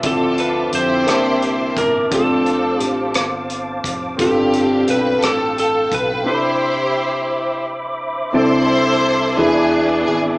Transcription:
Already playing: tonewheel organ E5
0.03 fingered electric bass D2, grand piano D3 C4 D4 E4 A4, tonewheel organ C4 A5 D6, string section C4 F4, electric slide guitar A4, kick, closed hi-hat
0.08 grand piano F3, string section A4
0.38 electric slide guitar B4, closed hi-hat
0.72 fingered electric bass F2, string section E4 G4 C5, electric slide guitar C5, closed hi-hat
1.06 fingered electric bass C2, grand piano C3 A#3 D4 E4 A5, tonewheel organ A#4 E5, cross-stick, closed hi-hat
1.42 closed hi-hat
1.77 fingered electric bass G1, electric slide guitar A#4, string section A#4, kick, closed hi-hat
2.10 fingered electric bass F1, grand piano C4 D4 F4 A4, string section C4 D4 A4, tonewheel organ C5 F5, kick, closed hi-hat
2.14 electric slide guitar A4
2.46 closed hi-hat
2.80 fingered electric bass A1, electric slide guitar G4, closed hi-hat
3.14 fingered electric bass G1, cross-stick, closed hi-hat
3.50 closed hi-hat
3.84 fingered electric bass F1, kick, closed hi-hat
4.17 fingered electric bass G1, grand piano G2 C4 F4 G4 A4, string section G4, tonewheel organ A4 G5, kick, closed hi-hat
4.21 string section C4 D4, electric slide guitar G4
4.53 closed hi-hat
4.87 fingered electric bass B1, string section B4, electric slide guitar B4, closed hi-hat
5.22 fingered electric bass A1, string section A4, electric slide guitar A4, cross-stick, closed hi-hat
5.56 string section A4, electric slide guitar A4, closed hi-hat
5.92 fingered electric bass B1, string section B4, electric slide guitar B4, kick, closed hi-hat
6.24 grand piano C3 C4 D4 E4, string section E4 G4 C5, tonewheel organ C5 E5 B5 D6
6.28 grand piano A4, electric slide guitar C5
6.35 grand piano B5
8.33 fingered electric bass C2, grand piano C3 C4 D4 E4 A4, string section E4 A4 C5, tonewheel organ C5 E5 A5 D6
9.37 fingered electric bass E2, grand piano E3 D4 E4 G#4 B4, string section G#4, tonewheel organ D5 G#5
9.41 string section B3 D4
10.06 fingered electric bass G#1, string section G#4

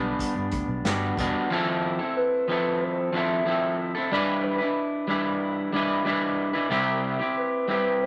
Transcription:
Already playing: picked electric bass B1, clean electric guitar G3 B3 D4, analog synth pad G3 B3 D4 F#5, soft synth lead G4
0.19 kick, closed hi-hat
0.35 picked electric bass G2
0.52 picked electric bass D2, kick, closed hi-hat
0.68 picked electric bass B1
0.83 picked electric bass G1, clean electric guitar G3 B3, snare, closed hi-hat
0.88 clean electric guitar D4 F#4
1.17 picked electric bass E1, clean electric guitar G3 B3 D4 F#4, kick, closed hi-hat
1.50 clean electric guitar F3 C4 E4 A4
1.99 clean electric guitar C4 E4 A4
2.16 soft synth lead B4
2.48 clean electric guitar F3 C4 E4 A4, soft synth lead B4
2.82 soft synth lead C5
3.13 clean electric guitar F3 C4 E4 A4, soft synth lead E5
3.46 clean electric guitar F3 C4 E4 A4
3.95 clean electric guitar C4 E4 A4
4.12 clean electric guitar G3 D4 E4 B4, soft synth lead D5
4.44 soft synth lead B4
4.58 clean electric guitar E4 B4
4.63 clean electric guitar D4
5.07 clean electric guitar G3 D4 E4 B4
5.73 clean electric guitar G3 D4 E4 B4
6.05 clean electric guitar G3 D4 E4 B4
6.53 clean electric guitar D4 E4 B4
6.70 clean electric guitar C3 G3 C4 E4 G4
7.19 clean electric guitar C4 E4 G4
7.37 soft synth lead B4
7.68 clean electric guitar G3 C4 E4 G4, soft synth lead B4
8.03 soft synth lead C5

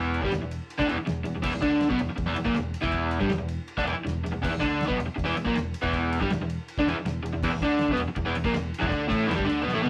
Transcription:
Already playing: picked electric bass E1, overdriven electric guitar E2 E3
0.14 ride
0.22 picked electric bass G1, overdriven electric guitar G2 G3, kick
0.31 picked electric bass E1, overdriven electric guitar E2, snare, ride
0.42 picked electric bass E1, overdriven electric guitar E2
0.51 ride
0.70 ride
0.78 picked electric bass D2, overdriven electric guitar D3 D4, kick
0.87 overdriven electric guitar E2 E3, ride
0.92 picked electric bass E1
0.98 muted overdriven electric guitar stroke, muted picked electric bass stroke
1.06 picked electric bass E1, overdriven electric guitar E2, snare, ride
1.24 picked electric bass E1, overdriven electric guitar E2, ride
1.35 picked electric bass E1, overdriven electric guitar E2
1.43 picked electric bass E1, overdriven electric guitar E2 E3, kick, crash
1.54 picked electric bass E1, overdriven electric guitar E2
1.62 picked electric bass D2, overdriven electric guitar D3 D4, kick, ride
1.81 snare, ride
1.90 picked electric bass B1, overdriven electric guitar B2 B3, kick
1.99 picked electric bass E1, overdriven electric guitar E2, ride
2.10 muted overdriven electric guitar stroke, muted picked electric bass stroke
2.17 picked electric bass E1, overdriven electric guitar E2, kick, ride
2.26 picked electric bass E1, overdriven electric guitar E2 E3
2.35 picked electric bass E1, overdriven electric guitar E2, ride
2.44 picked electric bass A#1, overdriven electric guitar A#2 A#3, kick
2.54 picked electric bass E1, overdriven electric guitar E2, snare, ride
2.74 ride
2.81 picked electric bass E1, overdriven electric guitar E2 E3, kick
2.92 kick, ride
3.11 ride
3.20 picked electric bass G1, overdriven electric guitar G2 G3, kick
3.30 picked electric bass E1, overdriven electric guitar E2, snare, ride
3.38 picked electric bass E1, overdriven electric guitar E2
3.48 ride
3.68 ride
3.77 picked electric bass D2, overdriven electric guitar D3 D4, kick
3.84 picked electric bass E1, overdriven electric guitar E2 E3, ride
3.94 muted overdriven electric guitar stroke, muted picked electric bass stroke
4.05 picked electric bass E1, overdriven electric guitar E2, snare, ride
4.24 picked electric bass E1, overdriven electric guitar E2, ride
4.32 picked electric bass E1, overdriven electric guitar E2
4.42 picked electric bass E1, overdriven electric guitar E2 E3, kick, crash
4.50 picked electric bass E1, overdriven electric guitar E2
4.59 picked electric bass D2, overdriven electric guitar D3 D4, kick, ride
4.81 snare, ride
4.86 picked electric bass B1, overdriven electric guitar B2 B3, kick
4.97 picked electric bass E1, overdriven electric guitar E2, ride
5.07 muted overdriven electric guitar stroke, muted picked electric bass stroke
5.16 picked electric bass E1, overdriven electric guitar E2, kick, ride
5.24 picked electric bass E1, overdriven electric guitar E2 E3
5.35 picked electric bass E1, overdriven electric guitar E2, ride
5.45 picked electric bass A#1, overdriven electric guitar A#2 A#3, kick
5.53 picked electric bass E1, overdriven electric guitar E2, snare, ride
5.74 ride
5.82 picked electric bass E1, overdriven electric guitar E2 E3, kick
5.93 kick, ride
6.12 ride
6.21 picked electric bass G1, overdriven electric guitar G2 G3, kick
6.30 picked electric bass E1, overdriven electric guitar E2, snare, ride
6.39 picked electric bass E1, overdriven electric guitar E2
6.50 ride
6.68 ride
6.78 picked electric bass D2, overdriven electric guitar D3 D4, kick
6.86 picked electric bass E1, overdriven electric guitar E2 E3, ride
6.99 muted overdriven electric guitar stroke
7.05 picked electric bass E1, overdriven electric guitar E2, snare, ride
7.22 picked electric bass E1, overdriven electric guitar E2, ride
7.33 picked electric bass E1, overdriven electric guitar E2
7.43 picked electric bass E1, overdriven electric guitar E2 E3, kick, crash
7.52 picked electric bass E1, overdriven electric guitar E2
7.61 picked electric bass D2, overdriven electric guitar D3 D4, kick, ride
7.79 snare, ride
7.88 picked electric bass B1, overdriven electric guitar B2, kick
7.93 picked electric bass E1, overdriven electric guitar B3, ride
8.00 overdriven electric guitar E2
8.08 muted picked electric bass stroke, muted overdriven electric guitar stroke
8.16 picked electric bass E1, overdriven electric guitar E2, kick, ride
8.25 picked electric bass E1, overdriven electric guitar E2 E3
8.35 picked electric bass E1, overdriven electric guitar E2, ride
8.44 picked electric bass A#1, overdriven electric guitar A#2 A#3, kick
8.53 picked electric bass E1, overdriven electric guitar E2, snare, ride
8.74 ride
8.79 picked electric bass E1, overdriven electric guitar E2 E3, kick
8.87 overdriven electric guitar D3 D4
8.91 picked electric bass D2, kick, ride
9.09 picked electric bass A1, overdriven electric guitar A2 A3, kick, ride
9.27 picked electric bass E1, overdriven electric guitar E2 E3, ride
9.32 overdriven electric guitar G2, snare
9.36 picked electric bass G1, overdriven electric guitar G3, kick
9.45 picked electric bass D2, overdriven electric guitar D3 D4
9.49 ride
9.63 overdriven electric guitar B2 B3
9.67 picked electric bass B1, snare
9.74 picked electric bass A1, overdriven electric guitar A2 A3
9.82 picked electric bass B1, overdriven electric guitar B2 B3, high tom

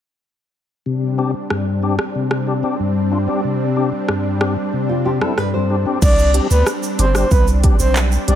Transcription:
0.86 tonewheel organ C3, analog synth pad G3 C4 D4
1.18 tonewheel organ C4 D4 G4
1.50 tonewheel organ G2, cross-stick
1.82 tonewheel organ C4 D4 G4
1.99 cross-stick
2.15 tonewheel organ C3
2.31 cross-stick
2.47 tonewheel organ D4 G4
2.63 tonewheel organ C4 D4 G4
2.80 tonewheel organ G2
3.11 tonewheel organ D4 F4
3.28 tonewheel organ C4 D4 G4
3.44 tonewheel organ C3
3.76 tonewheel organ C4 D4 G4
4.09 tonewheel organ G2, cross-stick
4.40 tonewheel organ C4 D4 G4, cross-stick
4.73 tonewheel organ C3
4.89 nylon-string guitar F4
5.05 tonewheel organ D4 F4, nylon-string guitar G4
5.21 tonewheel organ C4 D4 E4, nylon-string guitar A4, cross-stick
5.38 tonewheel organ G2, nylon-string guitar B4, cross-stick
5.54 nylon-string guitar C5
5.69 tonewheel organ D4 G4
5.86 tonewheel organ C4 D4 G4
6.02 sub bass C2, analog synth pad G3 C4 D4, soft synth lead D5, kick, crash, shaker
6.18 shaker
6.34 tonewheel organ G3 C4 D4 G4, closed hi-hat, shaker
6.51 sub bass D2, soft synth lead B4, shaker
6.67 cross-stick, shaker
6.83 shaker
6.98 sub bass G1, tonewheel organ D4 G4, soft synth lead C5, closed hi-hat, shaker
7.15 tonewheel organ G3 C4 D4 G4, soft synth lead C5, cross-stick, shaker
7.31 sub bass C2, soft synth lead B4, kick, shaker
7.47 shaker
7.63 tonewheel organ G3 C4 D4 G4, kick, closed hi-hat, shaker
7.79 sub bass B1, soft synth lead C5, shaker
7.96 clap, shaker
8.12 shaker
8.27 sub bass B1, tonewheel organ G3 C4 D4 G4, soft synth lead D5, closed hi-hat, shaker

